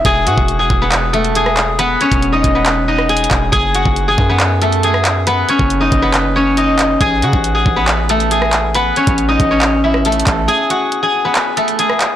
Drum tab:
HH |x-----x-----x-----------x-----x--x--x-----x-----|x-----x--x--x-----x-----x-----------x-x-x-x-----|x-----x-----x-----------x-----x--x--x-----x-----|x-----x-----x-----x-----x-----------x-----x-----|
CP |------------------------x-----------------x-----|------------------------x-----------------x-----|------------------------x-----------------x-----|------------------------x-----------------x-----|
SD |---------------------------------------r--------|---------------------------------r--------------|---------------------------------------r--------|------------------------------------------------|
BD |o--------o--------o-----------------------------|---------o--------o-----------------------o-----|o--------o--------o-----------------------------|---------o--------o-----------------------------|

HH |x-----x-----x-----------x-----x--x--x-----x-----|x-----x--x--x-----x-----x-----------x-x-x-x-----|x-----x-----x-----------x-----x--x--x-----x-----|
CP |------------------------x-----------------x-----|------------------------x-----------------x-----|------------------------x-----------------x-----|
SD |---------------------------------------r--------|---------------------------------r--------------|---------------------------------------r--------|
BD |o--------o--------o-----------------------------|---------o--------o-----------------------o-----|------------------------------------------------|